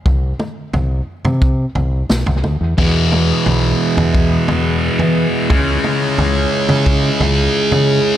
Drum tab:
SD |------------o---|----------------|----------------|
T2 |--o---------o-o-|--o-------o-----|--o-------o-----|
FT |o---o--o--o--o--|o---o--o--o--o--|o---o--o--o--o--|
BD |o-------o-------|o-------o-------|o-------o-------|